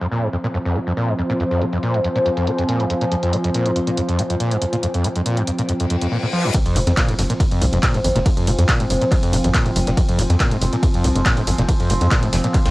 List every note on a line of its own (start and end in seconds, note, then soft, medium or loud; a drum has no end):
0.00 0.07 F2 medium
0.00 6.12 F3 medium
0.00 6.12 C4 medium
0.00 6.11 F4 medium
0.00 6.12 C5 medium
0.11 0.24 A#2 medium
0.11 closed hi-hat medium
0.23 0.28 G#2 medium
0.23 closed hi-hat medium
0.33 0.37 F2 medium
0.33 closed hi-hat medium
0.44 0.47 A#2 loud
0.44 closed hi-hat medium
0.54 0.58 F2 loud
0.54 closed hi-hat medium
0.65 0.77 F2 loud
0.65 closed hi-hat medium
0.76 0.79 C3 medium
0.76 closed hi-hat medium
0.87 0.93 F2 medium
0.87 closed hi-hat medium
0.91 4.25 G#5 medium
0.97 1.10 A#2 medium
0.97 closed hi-hat medium
1.08 1.14 G#2 medium
1.08 closed hi-hat medium
1.19 1.22 F2 medium
1.19 closed hi-hat medium
1.30 1.33 A#2 loud
1.30 closed hi-hat medium
1.40 1.44 F2 loud
1.40 closed hi-hat medium
1.51 1.63 F2 loud
1.51 closed hi-hat medium
1.61 1.65 C3 medium
1.61 closed hi-hat medium
1.73 1.78 F2 medium
1.73 closed hi-hat medium
1.83 1.96 A#2 medium
1.83 closed hi-hat medium
1.94 2.00 G#2 medium
1.94 closed hi-hat medium
2.04 2.08 F2 medium
2.04 closed hi-hat medium
2.16 2.19 A#2 loud
2.16 closed hi-hat medium
2.26 2.29 F2 loud
2.26 closed hi-hat medium
2.37 2.49 F2 loud
2.37 closed hi-hat medium
2.47 2.51 C3 medium
2.47 closed hi-hat medium
2.58 2.64 F2 medium
2.58 closed hi-hat medium
2.69 2.81 A#2 medium
2.69 closed hi-hat medium
2.80 2.85 G#2 medium
2.80 closed hi-hat medium
2.90 2.94 F2 medium
2.90 closed hi-hat medium
3.01 3.05 A#2 loud
3.01 closed hi-hat medium
3.12 3.15 F2 loud
3.12 closed hi-hat medium
3.23 3.34 F2 loud
3.23 closed hi-hat medium
3.33 3.37 C3 medium
3.33 closed hi-hat medium
3.44 3.50 F2 medium
3.44 closed hi-hat medium
3.54 3.67 A#2 medium
3.54 closed hi-hat medium
3.66 3.71 G#2 medium
3.66 closed hi-hat medium
3.76 3.80 F2 medium
3.76 closed hi-hat medium
3.87 3.90 A#2 loud
3.87 closed hi-hat soft
3.97 4.01 F2 loud
3.97 closed hi-hat medium
4.09 4.20 F2 loud
4.09 6.12 G5 medium
4.09 closed hi-hat medium
4.19 4.22 C3 medium
4.19 closed hi-hat medium
4.30 4.36 F2 medium
4.30 closed hi-hat medium
4.40 4.53 A#2 medium
4.40 closed hi-hat medium
4.51 4.57 G#2 medium
4.51 closed hi-hat medium
4.62 4.65 F2 medium
4.62 closed hi-hat medium
4.73 4.76 A#2 loud
4.73 closed hi-hat medium
4.83 4.87 F2 loud
4.83 closed hi-hat medium
4.94 5.06 F2 loud
4.94 closed hi-hat soft
5.04 5.08 C3 medium
5.04 closed hi-hat medium
5.16 5.21 F2 medium
5.16 closed hi-hat soft
5.26 5.39 A#2 medium
5.26 closed hi-hat medium
5.37 5.43 G#2 medium
5.37 closed hi-hat medium
5.47 5.51 F2 medium
5.47 closed hi-hat medium
5.59 5.62 A#2 loud
5.59 closed hi-hat soft
5.69 5.72 F2 loud
5.69 closed hi-hat medium
5.69 reverse cymbal medium
5.80 5.86 F2 loud
5.80 closed hi-hat medium
5.90 5.96 F2 medium
5.90 closed hi-hat medium
6.01 6.07 F2 medium
6.01 closed hi-hat medium
6.12 6.18 A#2 medium
6.23 6.26 A#2 loud
6.33 6.46 F3 loud
6.44 6.50 F2 loud
6.54 6.58 F2 loud
6.54 12.71 F3 medium
6.54 12.71 C4 medium
6.54 kick loud
6.54 closed hi-hat medium
6.54 ride medium
6.54 sub drop medium
6.66 6.77 F2 loud
6.66 closed hi-hat medium
6.66 closed hi-hat soft
6.76 6.84 F1 loud
6.76 6.80 C3 medium
6.76 closed hi-hat medium
6.76 open hi-hat loud
6.87 6.94 F2 medium
6.87 6.93 F2 medium
6.87 snare soft
6.87 closed hi-hat medium
6.96 7.10 A#2 medium
6.96 12.71 G#5 medium
6.96 kick loud
6.96 snare loud
6.96 clap loud
6.96 closed hi-hat medium
6.96 ride medium
7.08 7.16 F1 medium
7.08 7.14 G#2 medium
7.08 closed hi-hat medium
7.18 7.27 F1 medium
7.18 7.22 F2 medium
7.18 snare soft
7.18 closed hi-hat medium
7.18 open hi-hat loud
7.30 7.33 A#2 loud
7.30 closed hi-hat medium
7.40 7.44 F2 loud
7.40 kick loud
7.40 closed hi-hat medium
7.40 ride medium
7.51 7.63 F2 loud
7.51 closed hi-hat medium
7.61 7.69 C2 medium
7.61 7.65 C3 medium
7.61 closed hi-hat medium
7.61 open hi-hat loud
7.73 7.80 F1 loud
7.73 7.78 F2 medium
7.73 closed hi-hat medium
7.83 7.96 A#2 medium
7.83 kick loud
7.83 snare loud
7.83 clap loud
7.83 closed hi-hat medium
7.83 ride medium
7.94 8.01 F1 loud
7.94 8.00 G#2 medium
7.94 closed hi-hat soft
7.94 closed hi-hat medium
8.04 8.12 G#1 medium
8.04 8.08 F2 medium
8.04 closed hi-hat medium
8.04 open hi-hat loud
8.15 8.23 F1 medium
8.15 8.19 A#2 loud
8.15 snare soft
8.15 closed hi-hat medium
8.26 8.30 F2 loud
8.26 kick loud
8.26 closed hi-hat medium
8.26 ride medium
8.37 8.49 F2 loud
8.37 closed hi-hat medium
8.47 8.55 F1 loud
8.47 8.51 C3 medium
8.47 closed hi-hat medium
8.47 open hi-hat loud
8.58 8.66 F2 medium
8.58 8.64 F2 medium
8.58 closed hi-hat medium
8.69 8.81 A#2 medium
8.69 kick loud
8.69 snare loud
8.69 clap loud
8.69 closed hi-hat medium
8.69 ride medium
8.80 8.87 F1 medium
8.80 8.86 G#2 medium
8.80 closed hi-hat medium
8.90 8.98 F1 medium
8.90 8.94 F2 medium
8.90 closed hi-hat medium
8.90 open hi-hat loud
9.01 9.05 A#2 loud
9.01 closed hi-hat medium
9.11 9.15 F2 loud
9.11 kick loud
9.11 clap soft
9.11 closed hi-hat medium
9.11 open hi-hat medium
9.11 ride medium
9.23 9.34 F2 loud
9.23 closed hi-hat soft
9.23 closed hi-hat medium
9.33 9.41 F1 loud
9.33 9.37 C3 medium
9.33 closed hi-hat medium
9.33 open hi-hat loud
9.44 9.52 G#1 medium
9.44 9.50 F2 medium
9.44 closed hi-hat soft
9.44 closed hi-hat medium
9.54 9.67 A#2 medium
9.54 kick loud
9.54 snare loud
9.54 clap loud
9.54 closed hi-hat medium
9.54 ride medium
9.66 9.73 F1 loud
9.66 9.71 G#2 medium
9.66 closed hi-hat medium
9.76 9.84 F1 loud
9.76 9.79 F2 medium
9.76 closed hi-hat medium
9.76 open hi-hat loud
9.87 9.94 F1 medium
9.87 9.90 A#2 loud
9.87 snare soft
9.87 closed hi-hat medium
9.97 10.01 F2 loud
9.97 kick loud
9.97 closed hi-hat medium
9.97 ride medium
10.08 10.20 F2 loud
10.08 closed hi-hat soft
10.08 closed hi-hat medium
10.19 10.27 F1 loud
10.19 10.22 C3 medium
10.19 closed hi-hat medium
10.19 open hi-hat loud
10.30 10.37 F2 medium
10.30 10.36 F2 medium
10.30 snare soft
10.30 closed hi-hat medium
10.40 10.53 A#2 medium
10.40 kick loud
10.40 snare loud
10.40 clap loud
10.40 closed hi-hat medium
10.40 ride medium
10.51 10.59 F1 medium
10.51 10.57 G#2 medium
10.51 closed hi-hat medium
10.62 10.70 F1 medium
10.62 10.65 F2 medium
10.62 closed hi-hat medium
10.62 open hi-hat loud
10.73 10.76 A#2 loud
10.73 closed hi-hat medium
10.83 10.87 F2 loud
10.83 kick loud
10.83 closed hi-hat medium
10.83 ride medium
10.94 11.06 F2 loud
10.94 closed hi-hat medium
11.04 11.12 C2 medium
11.04 11.08 C3 medium
11.04 closed hi-hat medium
11.04 open hi-hat loud
11.15 11.23 F1 medium
11.15 11.21 F2 medium
11.15 closed hi-hat medium
11.26 11.39 A#2 medium
11.26 kick loud
11.26 snare loud
11.26 clap loud
11.26 closed hi-hat medium
11.26 ride medium
11.37 11.44 F1 loud
11.37 11.43 G#2 medium
11.37 closed hi-hat soft
11.37 closed hi-hat medium
11.47 11.55 G#1 medium
11.47 11.51 F2 medium
11.47 closed hi-hat medium
11.47 open hi-hat loud
11.59 11.66 F1 loud
11.59 11.62 A#2 loud
11.59 snare soft
11.59 closed hi-hat medium
11.69 11.72 F2 loud
11.69 kick loud
11.69 closed hi-hat medium
11.69 ride medium
11.80 11.92 F2 loud
11.80 closed hi-hat medium
11.90 11.98 F1 loud
11.90 11.94 C3 medium
11.90 closed hi-hat medium
11.90 open hi-hat loud
12.01 12.09 F2 medium
12.01 12.07 F2 medium
12.01 closed hi-hat medium
12.11 12.24 A#2 medium
12.11 kick loud
12.11 snare loud
12.11 clap loud
12.11 closed hi-hat medium
12.11 ride medium
12.23 12.30 F1 medium
12.23 12.28 G#2 medium
12.23 closed hi-hat medium
12.33 12.41 F1 medium
12.33 12.37 F2 medium
12.33 snare loud
12.33 closed hi-hat medium
12.33 open hi-hat loud
12.44 12.48 A#2 loud
12.44 closed hi-hat medium
12.54 12.58 F2 loud
12.54 kick loud
12.54 clap soft
12.54 closed hi-hat medium
12.54 ride medium
12.66 12.71 C2 medium
12.66 12.71 F2 loud
12.66 snare loud
12.66 closed hi-hat medium